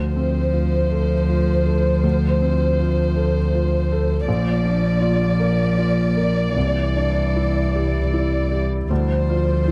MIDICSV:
0, 0, Header, 1, 6, 480
1, 0, Start_track
1, 0, Key_signature, -1, "minor"
1, 0, Tempo, 750939
1, 1303, Time_signature, 3, 2, 24, 8
1, 3692, Tempo, 777202
1, 6125, End_track
2, 0, Start_track
2, 0, Title_t, "Violin section"
2, 0, Program_c, 0, 48
2, 0, Note_on_c, 0, 72, 39
2, 2702, Note_off_c, 0, 72, 0
2, 2724, Note_on_c, 0, 74, 56
2, 5468, Note_off_c, 0, 74, 0
2, 5625, Note_on_c, 0, 72, 54
2, 6125, Note_off_c, 0, 72, 0
2, 6125, End_track
3, 0, Start_track
3, 0, Title_t, "Felt piano"
3, 0, Program_c, 1, 0
3, 0, Control_c, 1, 64, 127
3, 0, Note_on_c, 1, 38, 39
3, 103, Note_on_c, 1, 60, 31
3, 344, Note_on_c, 1, 65, 33
3, 488, Note_off_c, 1, 60, 0
3, 587, Note_on_c, 1, 69, 31
3, 730, Note_off_c, 1, 65, 0
3, 826, Note_on_c, 1, 65, 32
3, 970, Note_off_c, 1, 69, 0
3, 1061, Note_on_c, 1, 69, 34
3, 1209, Note_off_c, 1, 65, 0
3, 1278, Note_off_c, 1, 38, 0
3, 1302, Note_on_c, 1, 38, 48
3, 1314, Control_c, 1, 64, 0
3, 1426, Control_c, 1, 64, 127
3, 1445, Note_off_c, 1, 69, 0
3, 1543, Note_on_c, 1, 60, 38
3, 1784, Note_on_c, 1, 65, 36
3, 1923, Note_off_c, 1, 60, 0
3, 2023, Note_on_c, 1, 69, 37
3, 2162, Note_off_c, 1, 65, 0
3, 2267, Note_on_c, 1, 65, 41
3, 2401, Note_off_c, 1, 69, 0
3, 2506, Note_on_c, 1, 69, 44
3, 2642, Note_off_c, 1, 65, 0
3, 2705, Note_off_c, 1, 38, 0
3, 2737, Note_off_c, 1, 69, 0
3, 2737, Note_on_c, 1, 34, 55
3, 2742, Control_c, 1, 64, 0
3, 2831, Control_c, 1, 64, 127
3, 2972, Note_on_c, 1, 62, 38
3, 3203, Note_on_c, 1, 65, 40
3, 3352, Note_off_c, 1, 62, 0
3, 3450, Note_on_c, 1, 70, 37
3, 3591, Note_off_c, 1, 65, 0
3, 3696, Note_on_c, 1, 65, 36
3, 3835, Note_off_c, 1, 70, 0
3, 3933, Note_on_c, 1, 70, 36
3, 4078, Note_off_c, 1, 65, 0
3, 4151, Note_off_c, 1, 34, 0
3, 4174, Note_off_c, 1, 70, 0
3, 4179, Note_on_c, 1, 36, 43
3, 4185, Control_c, 1, 64, 0
3, 4284, Control_c, 1, 64, 127
3, 4428, Note_on_c, 1, 62, 35
3, 4672, Note_on_c, 1, 64, 33
3, 4810, Note_off_c, 1, 62, 0
3, 4914, Note_on_c, 1, 67, 32
3, 5054, Note_off_c, 1, 64, 0
3, 5150, Note_on_c, 1, 64, 34
3, 5293, Note_off_c, 1, 67, 0
3, 5386, Note_on_c, 1, 67, 34
3, 5530, Note_off_c, 1, 64, 0
3, 5599, Note_off_c, 1, 36, 0
3, 5622, Note_off_c, 1, 67, 0
3, 5626, Note_on_c, 1, 38, 55
3, 5634, Control_c, 1, 64, 0
3, 5720, Control_c, 1, 64, 127
3, 5866, Note_on_c, 1, 65, 44
3, 6102, Note_on_c, 1, 64, 36
3, 6125, Note_off_c, 1, 38, 0
3, 6125, Note_off_c, 1, 64, 0
3, 6125, Note_off_c, 1, 65, 0
3, 6125, End_track
4, 0, Start_track
4, 0, Title_t, "Ambient pad"
4, 0, Program_c, 2, 92
4, 0, Note_on_c, 2, 57, 48
4, 0, Note_on_c, 2, 65, 53
4, 0, Note_on_c, 2, 72, 50
4, 2703, Note_off_c, 2, 57, 0
4, 2704, Note_off_c, 2, 65, 0
4, 2705, Note_off_c, 2, 72, 0
4, 2743, Note_on_c, 2, 65, 57
4, 2747, Note_on_c, 2, 58, 51
4, 2748, Note_on_c, 2, 74, 56
4, 4154, Note_off_c, 2, 65, 0
4, 4168, Note_on_c, 2, 64, 53
4, 4170, Note_on_c, 2, 55, 53
4, 4180, Note_off_c, 2, 58, 0
4, 5619, Note_off_c, 2, 64, 0
4, 5620, Note_off_c, 2, 55, 0
4, 5629, Note_off_c, 2, 74, 0
4, 5640, Note_on_c, 2, 74, 61
4, 5646, Note_on_c, 2, 53, 58
4, 5646, Note_on_c, 2, 60, 60
4, 6125, Note_off_c, 2, 53, 0
4, 6125, Note_off_c, 2, 60, 0
4, 6125, Note_off_c, 2, 74, 0
4, 6125, End_track
5, 0, Start_track
5, 0, Title_t, "Cello"
5, 0, Program_c, 3, 42
5, 0, Note_on_c, 3, 53, 41
5, 2706, Note_off_c, 3, 53, 0
5, 2726, Note_on_c, 3, 53, 52
5, 4145, Note_off_c, 3, 53, 0
5, 4173, Note_on_c, 3, 52, 45
5, 5472, Note_off_c, 3, 52, 0
5, 5620, Note_on_c, 3, 53, 56
5, 6125, Note_off_c, 3, 53, 0
5, 6125, End_track
6, 0, Start_track
6, 0, Title_t, "Double bass"
6, 0, Program_c, 4, 43
6, 0, Note_on_c, 4, 38, 38
6, 2727, Note_on_c, 4, 34, 48
6, 2737, Note_off_c, 4, 38, 0
6, 4174, Note_on_c, 4, 36, 44
6, 4183, Note_off_c, 4, 34, 0
6, 5619, Note_off_c, 4, 36, 0
6, 5622, Note_on_c, 4, 38, 52
6, 6125, Note_off_c, 4, 38, 0
6, 6125, End_track
0, 0, End_of_file